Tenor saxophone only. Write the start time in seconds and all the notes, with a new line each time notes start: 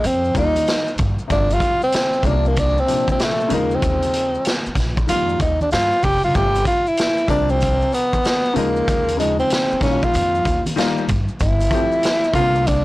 0.06 C4
0.38 D#4
1.32 D4
1.53 F4
1.84 C4
2.27 D4
2.48 A#3
2.59 D4
2.80 C4
3.12 C4
3.23 A3
3.53 A#3
3.75 C4
5.10 F4
5.42 D#4
5.62 D4
5.72 F4
6.04 G4
6.24 F4
6.36 G4
6.67 F4
6.88 E4
7.30 D4
7.51 C4
7.94 B3
8.57 A#3
9.20 G#3
9.40 C4
9.83 C#4
10.04 F4
11.42 E4
12.35 F4
12.67 D4